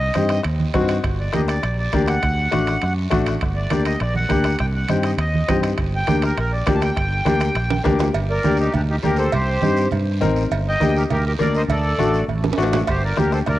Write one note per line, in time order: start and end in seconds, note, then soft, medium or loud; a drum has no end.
0.00 0.41 D#5 medium
0.14 0.39 G2 medium
0.14 0.36 C4 medium
0.14 0.36 D#4 medium
0.14 0.36 G4 medium
0.14 bombo rim medium
0.14 high conga medium
0.14 high timbale medium
0.14 short guiro medium
0.29 bombo rim medium
0.29 high timbale medium
0.29 short guiro medium
0.44 0.69 D#2 medium
0.44 bombo rim medium
0.44 high timbale medium
0.44 long guiro medium
0.60 high conga medium
0.74 0.98 G2 medium
0.74 0.95 C4 medium
0.74 0.95 D#4 medium
0.74 0.96 F#4 loud
0.74 bombo low medium
0.74 bombo rim medium
0.74 high conga medium
0.74 high timbale medium
0.74 low timbale medium
0.74 short guiro medium
0.88 bombo rim medium
0.88 high timbale medium
0.88 short guiro medium
1.04 1.28 G1 medium
1.04 bombo low medium
1.04 bombo rim medium
1.04 high timbale medium
1.04 long guiro medium
1.20 1.33 D5 medium
1.33 1.58 D2 medium
1.33 1.54 A#3 medium
1.33 1.55 D4 medium
1.33 1.55 G4 medium
1.33 1.41 D#5 medium
1.33 bombo rim medium
1.33 high conga medium
1.33 high timbale medium
1.33 short guiro medium
1.48 1.77 D5 medium
1.48 bombo rim medium
1.48 high timbale medium
1.48 short guiro medium
1.63 1.87 A#1 medium
1.63 bombo rim medium
1.63 high timbale medium
1.63 long guiro medium
1.79 2.06 D5 medium
1.92 2.17 D2 medium
1.92 2.14 A#3 medium
1.92 2.14 D4 medium
1.92 2.14 G4 medium
1.92 bombo low medium
1.92 bombo rim medium
1.92 high conga medium
1.92 high timbale medium
1.92 short guiro medium
2.06 2.93 F#5 loud
2.06 bombo rim medium
2.06 high timbale medium
2.06 short guiro medium
2.21 2.47 D2 medium
2.21 bombo low medium
2.21 bombo rim medium
2.21 high timbale medium
2.21 long guiro medium
2.52 2.76 A1 medium
2.52 2.73 A3 medium
2.52 2.73 D4 medium
2.52 2.73 F#4 medium
2.52 bombo rim medium
2.52 high conga medium
2.52 high timbale medium
2.52 short guiro medium
2.67 bombo rim medium
2.67 high timbale medium
2.67 short guiro medium
2.81 3.06 F#2 medium
2.81 bombo rim medium
2.81 high timbale medium
2.81 long guiro medium
3.10 3.36 A1 medium
3.10 3.32 A3 medium
3.10 3.32 D4 medium
3.10 3.32 F#4 medium
3.10 bombo low medium
3.10 bombo rim medium
3.10 high conga medium
3.10 high timbale medium
3.10 short guiro medium
3.26 bombo rim medium
3.26 high timbale medium
3.26 short guiro medium
3.41 3.66 G1 medium
3.41 bombo low medium
3.41 bombo rim medium
3.41 high timbale medium
3.41 long guiro medium
3.56 3.84 D5 medium
3.70 3.95 D2 medium
3.70 3.91 A#3 medium
3.70 3.92 D4 medium
3.70 3.92 G4 medium
3.70 bombo rim medium
3.70 high conga medium
3.70 high timbale medium
3.70 short guiro medium
3.85 3.99 D#5 medium
3.85 bombo rim medium
3.85 high timbale medium
3.85 short guiro medium
4.00 4.24 A#1 medium
4.00 4.15 D5 medium
4.00 bombo rim medium
4.00 high timbale medium
4.00 long guiro medium
4.15 4.57 F#5 loud
4.15 high conga medium
4.29 4.54 D2 medium
4.29 4.50 A#3 medium
4.29 4.50 D4 medium
4.29 4.51 G4 medium
4.29 bombo low medium
4.29 bombo rim medium
4.29 high conga medium
4.29 high timbale medium
4.29 short guiro medium
4.44 bombo rim medium
4.44 high timbale medium
4.44 short guiro medium
4.59 4.84 C2 medium
4.59 4.66 G5 medium
4.59 bombo low medium
4.59 bombo rim medium
4.59 high timbale medium
4.59 long guiro medium
4.75 4.90 F#5 medium
4.88 5.13 G2 medium
4.88 5.10 C4 medium
4.88 5.10 D#4 medium
4.88 5.10 G4 medium
4.88 4.97 G5 medium
4.88 bombo rim medium
4.88 high conga medium
4.88 high timbale medium
4.88 short guiro medium
5.03 5.11 D#5 medium
5.03 bombo rim medium
5.03 high timbale medium
5.03 short guiro medium
5.18 5.42 D#2 medium
5.18 5.60 D#5 medium
5.18 bombo rim medium
5.18 high timbale medium
5.18 long guiro medium
5.35 high conga medium
5.48 5.72 G2 medium
5.48 5.69 C4 medium
5.48 5.69 D#4 medium
5.48 5.70 G4 medium
5.48 bombo low medium
5.48 bombo rim medium
5.48 high conga medium
5.48 high timbale medium
5.48 low timbale medium
5.48 short guiro medium
5.63 bombo rim medium
5.63 high timbale medium
5.63 short guiro medium
5.78 6.02 G1 medium
5.78 bombo low medium
5.78 bombo rim medium
5.78 high timbale medium
5.78 long guiro medium
5.96 6.22 G5 loud
6.07 6.32 D2 medium
6.07 6.28 A#3 medium
6.07 6.28 D4 medium
6.07 6.29 G4 medium
6.07 bombo rim medium
6.07 high conga medium
6.07 high timbale medium
6.07 short guiro medium
6.22 6.38 A#4 medium
6.22 bombo rim medium
6.22 high timbale medium
6.22 short guiro medium
6.37 6.61 A#1 medium
6.37 6.52 A#4 medium
6.37 bombo rim medium
6.37 high timbale medium
6.37 long guiro medium
6.53 6.74 D5 medium
6.66 6.91 D2 medium
6.66 6.88 A#3 medium
6.66 6.87 D4 medium
6.66 6.88 G4 medium
6.66 bombo low medium
6.66 bombo rim medium
6.66 high conga medium
6.66 high timbale medium
6.66 low timbale medium
6.66 short guiro medium
6.75 6.82 A5 medium
6.82 7.82 G5 medium
6.82 bombo rim medium
6.82 high timbale medium
6.82 short guiro medium
6.96 7.20 G1 medium
6.96 bombo low medium
6.96 bombo rim medium
6.96 high timbale medium
6.96 long guiro medium
7.25 7.49 D2 medium
7.25 7.46 A#3 medium
7.25 7.46 D4 medium
7.25 7.47 G4 medium
7.25 bombo rim medium
7.25 high conga medium
7.25 high timbale medium
7.25 short guiro medium
7.40 bombo rim medium
7.40 high timbale medium
7.40 short guiro medium
7.55 7.79 A#1 medium
7.55 bombo rim medium
7.55 high timbale medium
7.55 long guiro medium
7.71 high conga medium
7.71 high timbale medium
7.84 8.09 D2 medium
7.84 8.05 A#3 medium
7.84 8.05 D4 medium
7.84 8.06 G4 medium
7.84 bombo low medium
7.84 bombo rim medium
7.84 high conga medium
7.84 low timbale medium
7.84 short guiro medium
7.99 bombo rim medium
7.99 low timbale medium
7.99 short guiro medium
8.14 8.38 G1 medium
8.14 cowbell loud
8.14 long guiro medium
8.30 8.58 A#4 medium
8.30 8.57 D5 medium
8.43 8.68 D2 medium
8.43 8.65 A#3 medium
8.43 8.65 D4 medium
8.43 8.65 G4 medium
8.43 high conga medium
8.43 short guiro medium
8.57 8.73 D#4 medium
8.57 8.73 G4 medium
8.57 short guiro medium
8.72 8.97 D2 medium
8.72 8.81 D4 medium
8.72 8.81 G4 medium
8.72 cowbell medium
8.72 low conga medium
8.72 long guiro medium
8.90 8.96 D#4 medium
8.90 8.96 G4 medium
9.02 9.27 D2 medium
9.02 9.24 A#3 medium
9.02 9.24 D4 medium
9.02 9.24 G4 medium
9.02 9.18 G4 medium
9.02 9.17 A#4 medium
9.02 high conga medium
9.02 short guiro medium
9.16 9.32 A4 medium
9.16 9.32 C5 medium
9.16 short guiro medium
9.32 9.57 C2 medium
9.32 9.88 G4 medium
9.32 9.88 C5 medium
9.32 cowbell loud
9.32 low conga medium
9.32 long guiro medium
9.61 9.86 G2 medium
9.61 9.83 C4 medium
9.61 9.83 D#4 medium
9.61 9.83 G4 medium
9.61 high conga medium
9.61 short guiro medium
9.77 short guiro medium
9.91 10.24 G2 medium
9.91 cowbell medium
9.91 low conga medium
9.91 long guiro medium
10.21 10.46 A1 medium
10.21 10.42 C4 medium
10.21 10.42 D#4 medium
10.21 10.42 A#4 loud
10.21 high conga medium
10.21 low conga medium
10.21 short guiro medium
10.36 short guiro medium
10.51 10.75 G1 loud
10.51 cowbell loud
10.51 long guiro medium
10.68 10.94 D#5 medium
10.68 10.98 G5 loud
10.80 11.04 D2 medium
10.80 11.01 A#3 medium
10.80 11.01 D4 medium
10.80 11.01 G4 medium
10.80 high conga medium
10.80 short guiro medium
10.96 11.03 G4 medium
10.96 11.03 A#4 medium
10.96 short guiro medium
11.10 11.34 D2 medium
11.10 11.25 G4 medium
11.10 11.24 A#4 medium
11.10 cowbell medium
11.10 low conga medium
11.10 long guiro medium
11.26 11.33 G4 medium
11.26 11.32 A#4 medium
11.39 11.63 D2 medium
11.39 11.60 A#3 medium
11.39 11.60 D4 medium
11.39 11.60 A#4 medium
11.39 11.54 A#4 medium
11.39 11.55 D5 loud
11.39 high conga medium
11.39 short guiro medium
11.55 11.62 C5 medium
11.55 11.62 D#5 medium
11.55 short guiro medium
11.68 11.92 D2 loud
11.68 12.25 A4 medium
11.68 12.25 D5 medium
11.68 cowbell medium
11.68 low conga medium
11.68 long guiro medium
11.98 12.22 A1 medium
11.98 12.19 A3 medium
11.98 12.20 D4 medium
11.98 12.20 F#4 medium
11.98 high conga medium
11.98 short guiro medium
12.14 short guiro medium
12.28 12.52 A1 medium
12.28 cowbell medium
12.28 high conga medium
12.28 long guiro medium
12.44 high conga loud
12.44 high timbale medium
12.53 high timbale medium
12.57 12.81 A1 medium
12.57 12.78 A3 medium
12.57 12.78 D4 medium
12.57 12.78 F#4 loud
12.57 short guiro medium
12.63 low timbale medium
12.73 low conga medium
12.73 low timbale medium
12.73 short guiro medium
12.87 13.12 G1 loud
12.87 13.02 G4 medium
12.87 13.04 C5 medium
12.87 bombo low medium
12.87 bombo rim medium
12.87 cowbell loud
12.87 long guiro medium
13.04 13.17 A#4 medium
13.04 13.18 D5 medium
13.17 13.41 D2 medium
13.17 13.37 A#3 medium
13.17 13.38 D4 medium
13.17 13.38 G4 medium
13.17 13.32 G4 medium
13.17 13.32 A#4 medium
13.17 bombo rim medium
13.17 high conga medium
13.17 short guiro medium
13.32 13.39 A4 medium
13.32 13.39 C5 medium
13.32 bombo rim medium
13.32 short guiro medium
13.46 13.59 D2 medium
13.46 13.59 A#4 medium
13.46 13.59 D5 medium
13.46 bombo rim medium
13.46 cowbell medium
13.46 low conga medium
13.46 long guiro medium